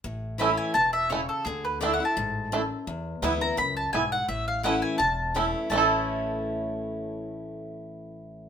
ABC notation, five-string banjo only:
X:1
M:4/4
L:1/8
Q:"Swing" 1/4=169
K:A
V:1 name="Five-string banjo"
z2 [A,CE] z3 [A,CE] z | z2 [A,DE] z3 [A,DE] z | z2 [B,E] z3 [B,E] z | z2 [A,CE] z3 [A,CE] z |
[A,CEA]8- | [A,CEA]8 |]